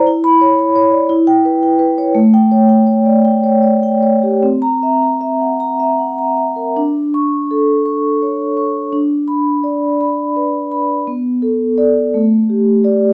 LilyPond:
\new Staff \with { instrumentName = "Vibraphone" } { \time 6/8 \key b \minor \tempo 4. = 56 << { r16 b''8 r4 g''8 r8. | r16 g''8 r2 r16 | r16 bes''8 r2 r16 | r8 cis'''8. r4. r16 |
r8 b''8. r4. r16 | r4 d''8 r4 d''8 | } \\ { e'8 cis''16 b''16 cis''16 d''16 e'8 b'16 g''16 b'16 cis''16 | a8 cis''16 g''16 cis''16 d''16 g''16 cis''16 d''16 g''16 cis''16 g'16 | c'8 e''16 bes''16 e''16 fis''16 bes''16 e''16 fis''16 bes''16 e''16 bes'16 | d'4 a'8 cis'''8 cis''8 cis'''8 |
d'4 d''8 b''8 b'8 b''8 | b8 a'8 a'8 a8 g'8 g'8 | } >> }